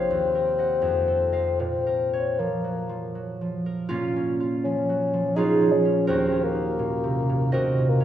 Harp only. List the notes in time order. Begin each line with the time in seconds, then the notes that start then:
Already playing: A#1 A#4 C#5 F5
0.11 D#2
0.35 A#4
0.58 D#5 F#5
0.82 F2
1.08 A4
1.32 D#5 F5
1.60 A#2
1.87 A#4
2.13 C#5
2.39 F3
2.64 F#3
2.89 F3
3.15 F#3
3.41 F3
3.66 A#4
3.89 A#2 A#3 C#4 F4
4.16 C#4
4.40 F4
4.65 F3
4.89 F#3
5.13 F3
5.36 F#3 C#4 F4 G#4
5.62 F3
5.85 C#4
6.07 D#2 D#4 F#4 A#4
6.32 C#4
6.55 D#4
6.79 A#2
7.04 C3
7.29 A#2
7.52 C3 F#4 A#4 D#5
7.78 A#2
8.00 C#4